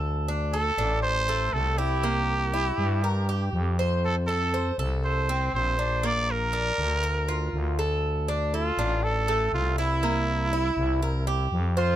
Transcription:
X:1
M:4/4
L:1/8
Q:1/4=120
K:Dm
V:1 name="Trumpet"
z2 A2 c2 A G- | G6- G z | A A2 z c2 c2 | d B6 z |
z2 F2 A2 F E- | E6 z F |]
V:2 name="Cuban tres"
A D A D2 A,2 E | B,2 E2 B G2 c- | c A c A2 C2 D | B,2 D2 B F2 A- |
A D A D2 A,2 E | B,2 E2 B G2 c |]
V:3 name="FM bass" clef=bass
D,,3 A,,,3 C,,2- | C,,3 G,,3 F,,2- | F,,3 C,,3 B,,,2- | B,,,3 D,,3 D,,2- |
D,,3 A,,,3 C,,2- | C,,3 C,,3 F,,2 |]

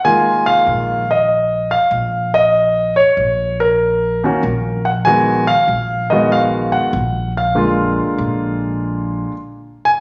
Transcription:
X:1
M:4/4
L:1/8
Q:"Swing" 1/4=96
K:Bbphr
V:1 name="Grand piano"
a f2 e2 f2 e- | e d2 B4 g | a f2 e f g2 f- | f3 z4 a |]
V:2 name="Grand piano"
[E,A,B,F]3 z4 z | z4 z [E,B,DG] z2 | [E,A,CG] z2 [E,A,CG]3 z2 | [=D,A,B,F]4- [D,A,B,F] z3 |]
V:3 name="Upright bass" clef=bass
z2 B,,,3 z B,,,2- | B,,, z B,,,3 z B,,,2- | B,,, z B,,,3 z B,,,2- | B,,, z B,,,3 z3 |]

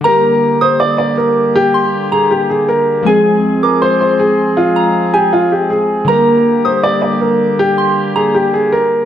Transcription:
X:1
M:4/4
L:1/8
Q:1/4=159
K:Gphr
V:1 name="Synth bell"
b3 e' d'4 | z c'2 b z4 | a3 d' c'4 | z b2 a z4 |
b3 e' d'4 | z c'2 b z4 |]
V:2 name="Grand piano"
B3 c d d B2 | G3 A G A B2 | A3 B c c A2 | F3 G F G A2 |
B3 c d d B2 | G3 A G A B2 |]
V:3 name="Brass ensemble"
[D,G,B,G]8- | [D,G,B,G]8 | [F,A,CA]8- | [F,A,CA]8 |
[D,G,B,G]8- | [D,G,B,G]8 |]
V:4 name="Synth keys"
[D,G,B,G]8- | [D,G,B,G]8 | [F,A,CA]8- | [F,A,CA]8 |
[D,G,B,G]8- | [D,G,B,G]8 |]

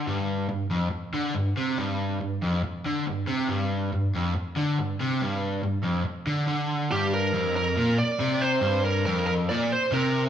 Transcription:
X:1
M:4/4
L:1/16
Q:1/4=140
K:Gm
V:1 name="Lead electric guitar"
z16 | z16 | z16 | z16 |
G2 B4 B4 d4 c2- | c2 B2 B2 B2 d2 c2 B3 z |]
V:2 name="Overdriven electric guitar" clef=bass
G,,4 G,,2 F,,2 z2 D,2 G,,2 C,2 | G,,4 G,,2 F,,2 z2 D,2 G,,2 C,2 | G,,4 G,,2 F,,2 z2 D,2 G,,2 C,2 | G,,4 G,,2 F,,2 z2 D,2 D,4 |
G,,4 F,,4 B,,2 z2 C,4 | G,,4 F,,4 B,,2 z2 C,4 |]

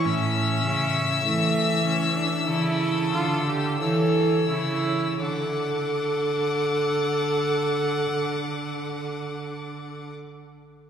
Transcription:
X:1
M:4/4
L:1/16
Q:1/4=42
K:Aphr
V:1 name="Violin"
e'12 e'4 | d'16 |]
V:2 name="Violin"
e8 A4 ^c4 | ^f16 |]
V:3 name="Viola"
^C4 A,2 C D E2 F G A2 E2 | A16 |]
V:4 name="Cello" clef=bass
A,,2 ^C,2 E,4 C,2 D,2 E,2 C,2 | D,16 |]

